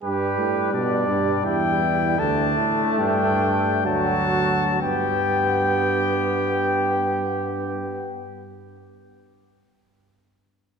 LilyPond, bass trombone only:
\new Staff \with { instrumentName = "Bass trombone" } { \clef bass \time 3/4 \key g \major \tempo 4 = 60 g,8 a,8 b,8 g,8 e,4 | d,8 a,8 g,4 d,4 | g,2.~ | g,2. | }